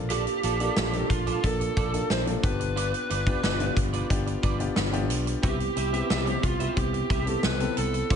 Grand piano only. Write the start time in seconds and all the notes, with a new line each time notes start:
Already playing: A#3 D4 F4 A4 F5
0.60 A#3 D4 F4 A4
0.93 A#3 D4 F4 A4
1.43 A#3 D4 F4 A4
1.93 A#3 D4 F4 A4
2.26 A#3 D4 F4 A4
2.43 B3 D4 F4 G4
3.26 B3 D4 F4 G4
3.60 B3 D4 F4 G4
4.09 B3 D4 F4 G4
4.59 B3 D4 F4 G4
4.92 B3 D4 F4 G4
5.42 B3 C4 E4 G4
5.92 B3 C4 E4 G4
6.26 B3 C4 E4 G4
6.76 B3 C4 E4 G4
7.26 B3 C4 E4 A4
7.60 B3 C4 E4 A4
8.10 C4 D4 F4 A4